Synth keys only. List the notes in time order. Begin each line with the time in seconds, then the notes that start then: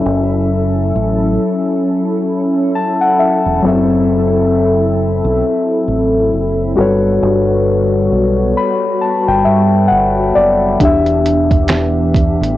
Already playing: F#3 C#4 A4 E5
2.75 A5
3.01 F#5
3.19 E5
3.62 F#3 C4 A4
3.68 E5
6.75 G3 F#4 A4
6.79 B4 C#5
8.57 B5
9.01 A5
9.28 G5
9.45 E5
9.88 F#5
10.35 D5
10.79 E3 D4 G4
10.85 E5